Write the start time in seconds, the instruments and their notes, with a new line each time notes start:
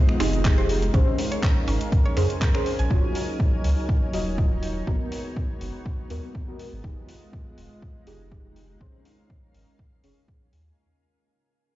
Already playing: ambient pad G#3 D#4 F5, analog synth pad G#3 F4 D#5, synth stab D#4 G4 G#4
0.09 finger snap
0.20 sub bass F1, synth arpeggio sound C4, synth stab D#4 G4 G#4, finger snap, open hi-hat
0.33 closed hi-hat
0.45 synth stab D#4 G4 G#4, kick, clap, closed hi-hat
0.58 sub bass F1, synth arpeggio sound C5
0.69 open hi-hat
0.82 closed hi-hat
0.94 sub bass A#1, synth stab C#4 G#4 C5, analog synth pad C#4 A#4, ambient pad C#4, synth arpeggio sound C#4, kick, closed hi-hat
1.16 ambient pad G#5, open hi-hat
1.32 synth arpeggio sound C#5, closed hi-hat
1.43 kick, clap, closed hi-hat
1.58 ambient pad A#4
1.68 sub bass G#1, synth arpeggio sound C#4, open hi-hat
1.81 closed hi-hat
1.92 kick, closed hi-hat
2.06 synth arpeggio sound C#5
2.17 sub bass F2, synth stab C#4 G#4 C5, finger snap, open hi-hat
2.30 closed hi-hat
2.41 synth arpeggio sound A#4, kick, clap, closed hi-hat
2.54 synth stab C#4 G#4 C5, synth arpeggio sound A#4, finger snap
2.66 open hi-hat
2.79 sub bass A#1, synth arpeggio sound G#5, closed hi-hat
2.90 sub bass D#1, analog synth pad F#3 D#4 C#5, ambient pad D#4, synth stab F4 F#4 C#5, kick
3.15 open hi-hat
3.40 kick
3.55 ambient pad C#5
3.64 sub bass C#2, open hi-hat
3.89 kick
4.13 sub bass D#1, synth stab F4 F#4 D#5, open hi-hat
4.38 synth stab F4 F#4 D#5, kick
4.51 sub bass D#1
4.63 open hi-hat
4.87 sub bass G#1, analog synth pad G#3 B3 F#4, synth stab B3 F#4 A#4, ambient pad B3, kick
5.12 open hi-hat
5.36 kick
5.59 sub bass F#1, ambient pad G#3, open hi-hat
5.86 kick
6.10 sub bass D#2, synth stab B3 F#4 A#4, open hi-hat
6.35 kick
6.48 synth stab B3 F#4 A#4
6.59 open hi-hat
6.73 sub bass G#1
6.84 sub bass F1, synth stab D#4 G4 G#4, ambient pad D#4, analog synth pad F4 D#5, kick
7.09 open hi-hat
7.33 kick
7.58 sub bass D#1, open hi-hat
7.73 ambient pad F5
7.82 kick
8.07 sub bass F1, synth stab D#4 G4 G#4, open hi-hat
8.31 synth stab D#4 G4 G#4, kick
8.45 sub bass F1
8.56 open hi-hat
8.80 sub bass A#1, synth stab C#4 G#4 C5, ambient pad C#4, analog synth pad C#4 A#4, kick
9.05 open hi-hat
9.30 kick
9.54 sub bass G#1, open hi-hat
9.79 kick
10.03 sub bass F1, synth stab C#4 G#4 C#5, open hi-hat
10.28 kick
10.53 sub bass D#2, open hi-hat